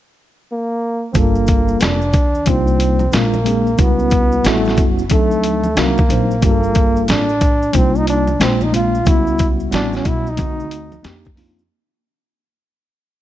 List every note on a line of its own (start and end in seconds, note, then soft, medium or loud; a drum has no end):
0.52 1.07 A#3 medium
1.12 1.78 G1 loud
1.12 1.99 G3 medium
1.12 1.99 A#3 medium
1.12 1.20 C4 medium
1.12 1.99 D4 medium
1.12 2.00 F4 medium
1.12 2.00 A4 medium
1.12 kick loud
1.12 closed hi-hat medium
1.12 maracas medium
1.18 1.85 A#3 medium
1.35 maracas soft
1.47 kick medium
1.47 closed hi-hat medium
1.47 maracas soft
1.68 maracas soft
1.80 2.12 F1 medium
1.80 2.51 D4 medium
1.80 snare loud
1.80 closed hi-hat medium
1.80 maracas medium
2.02 maracas soft
2.13 2.45 D#2 medium
2.13 kick medium
2.13 closed hi-hat medium
2.13 low conga medium
2.13 maracas soft
2.35 maracas soft
2.46 3.10 C2 loud
2.46 3.03 G3 medium
2.46 3.03 A#3 medium
2.46 3.03 D4 medium
2.46 3.04 D#4 medium
2.46 3.04 F4 medium
2.46 kick medium
2.46 closed hi-hat medium
2.46 high conga soft
2.46 maracas medium
2.50 3.17 C4 medium
2.67 maracas soft
2.80 closed hi-hat medium
2.80 maracas soft
2.99 high conga medium
2.99 maracas soft
3.11 3.76 A#1 medium
3.11 3.36 G#3 medium
3.11 3.36 A#3 medium
3.11 3.36 C4 medium
3.11 3.37 D4 medium
3.11 3.37 F4 medium
3.11 snare loud
3.11 closed hi-hat medium
3.11 maracas medium
3.15 3.83 A#3 medium
3.34 high conga medium
3.34 maracas soft
3.44 3.69 G#3 medium
3.44 3.69 A#3 medium
3.44 3.70 C4 medium
3.44 3.70 D4 medium
3.44 3.70 G#4 medium
3.44 closed hi-hat medium
3.44 low conga medium
3.44 maracas soft
3.67 maracas soft
3.78 4.41 C#2 loud
3.78 4.42 G3 medium
3.78 4.43 B3 medium
3.78 4.49 B3 medium
3.78 4.44 C#4 medium
3.78 4.44 E4 medium
3.78 4.45 F#4 medium
3.78 kick loud
3.78 closed hi-hat medium
3.78 maracas medium
3.99 maracas soft
4.10 kick medium
4.10 closed hi-hat medium
4.10 maracas soft
4.32 maracas soft
4.44 4.76 A1 loud
4.44 5.01 G3 medium
4.44 4.87 A3 medium
4.44 5.01 B3 medium
4.44 5.01 C#4 medium
4.44 5.02 E4 medium
4.44 5.02 F#4 medium
4.44 snare loud
4.44 closed hi-hat medium
4.44 maracas medium
4.65 snare soft
4.65 maracas soft
4.77 5.09 F#1 medium
4.77 kick medium
4.77 closed hi-hat medium
4.77 low conga medium
4.77 maracas soft
4.99 maracas soft
5.09 5.74 D2 medium
5.09 5.66 F#3 medium
5.09 5.81 A3 medium
5.09 5.67 C4 medium
5.09 5.67 D4 medium
5.09 5.67 D#4 medium
5.09 5.68 A4 medium
5.09 kick medium
5.09 closed hi-hat medium
5.09 high conga soft
5.09 maracas medium
5.31 maracas soft
5.43 closed hi-hat medium
5.43 maracas soft
5.64 high conga medium
5.64 maracas soft
5.75 6.08 C2 medium
5.75 6.00 F#3 medium
5.75 6.44 A#3 medium
5.75 6.00 C4 medium
5.75 6.00 D4 medium
5.75 6.01 D#4 medium
5.75 6.01 F#4 medium
5.75 snare loud
5.75 closed hi-hat medium
5.75 maracas medium
5.98 kick medium
5.98 high conga medium
5.98 maracas soft
6.08 6.41 A#1 medium
6.08 6.33 F#3 medium
6.08 6.33 C4 medium
6.08 6.33 D4 medium
6.08 6.34 D#4 medium
6.08 6.34 C5 medium
6.08 closed hi-hat medium
6.08 low conga medium
6.08 maracas soft
6.31 maracas soft
6.41 7.05 G1 loud
6.41 7.26 G3 medium
6.41 7.27 A#3 medium
6.41 7.06 A#3 loud
6.41 7.27 D4 medium
6.41 7.27 F4 medium
6.41 6.51 G4 medium
6.41 kick loud
6.41 closed hi-hat medium
6.41 maracas medium
6.50 7.31 A4 medium
6.63 maracas soft
6.74 kick medium
6.74 closed hi-hat medium
6.74 maracas soft
6.96 maracas soft
7.08 7.71 A1 medium
7.08 7.78 D4 loud
7.08 snare loud
7.08 closed hi-hat medium
7.08 maracas medium
7.29 maracas soft
7.41 kick medium
7.41 closed hi-hat medium
7.41 low conga medium
7.41 maracas soft
7.62 maracas soft
7.73 8.37 C2 medium
7.73 8.30 G3 medium
7.73 8.30 A#3 medium
7.73 7.99 C4 medium
7.73 8.31 D4 medium
7.73 8.31 D#4 medium
7.73 8.31 F4 medium
7.73 kick medium
7.73 closed hi-hat medium
7.73 high conga soft
7.73 maracas medium
7.95 8.08 D#4 medium
7.95 maracas soft
8.07 8.39 D4 medium
8.07 closed hi-hat medium
8.07 maracas soft
8.27 high conga medium
8.27 maracas soft
8.39 9.03 A#1 medium
8.39 8.63 G#3 medium
8.39 8.64 A#3 medium
8.39 8.64 C4 medium
8.39 8.65 C4 medium
8.39 8.64 D4 medium
8.39 8.65 F4 medium
8.39 snare loud
8.39 closed hi-hat medium
8.39 maracas medium
8.61 8.74 D#4 medium
8.61 high conga medium
8.61 maracas soft
8.72 8.96 G#3 medium
8.72 8.96 A#3 medium
8.72 8.97 C4 medium
8.72 8.97 D4 medium
8.72 8.98 F4 medium
8.72 closed hi-hat medium
8.72 low conga medium
8.72 maracas soft
8.76 9.10 F4 medium
8.95 maracas soft
9.04 9.69 C#2 medium
9.04 9.70 G3 medium
9.04 9.70 B3 medium
9.04 9.71 C#4 medium
9.04 9.72 E4 medium
9.04 9.72 F#4 medium
9.04 kick loud
9.04 closed hi-hat medium
9.04 maracas medium
9.09 9.48 E4 loud
9.27 maracas soft
9.38 kick medium
9.38 closed hi-hat medium
9.38 maracas soft
9.60 maracas soft
9.71 10.04 A1 loud
9.71 10.28 G3 medium
9.71 10.28 B3 medium
9.71 10.29 C#4 medium
9.71 10.29 E4 medium
9.71 10.29 F#4 medium
9.71 snare loud
9.71 closed hi-hat medium
9.71 maracas medium
9.75 9.93 D4 loud
9.93 10.09 C#4 medium
9.93 snare soft
9.93 maracas soft
10.05 10.37 B1 medium
10.05 10.31 E4 loud
10.05 kick loud
10.05 closed hi-hat medium
10.05 low conga medium
10.05 maracas soft
10.27 11.39 D#4 loud
10.27 maracas soft
10.37 11.01 D2 loud
10.37 10.95 D3 medium
10.37 10.94 A3 medium
10.37 10.94 C4 medium
10.37 10.95 D#4 medium
10.37 10.95 F#4 medium
10.37 kick medium
10.37 closed hi-hat medium
10.37 high conga soft
10.37 maracas medium
10.60 maracas soft
10.71 closed hi-hat medium
10.71 maracas soft
10.92 high conga medium
10.92 maracas soft
11.03 11.67 F2 medium
11.03 11.27 A#3 medium
11.03 11.28 C4 medium
11.03 11.28 D4 medium
11.03 11.28 D#4 medium
11.03 11.29 G4 medium
11.03 snare loud
11.03 closed hi-hat medium
11.03 maracas medium
11.25 kick medium
11.25 high conga medium
11.25 maracas soft
11.35 11.60 A#3 medium
11.35 11.60 C4 medium
11.35 11.61 D4 medium
11.35 11.61 D#4 medium
11.35 11.61 F4 medium
11.35 open hi-hat soft
11.35 low conga medium
11.35 maracas soft
11.59 maracas soft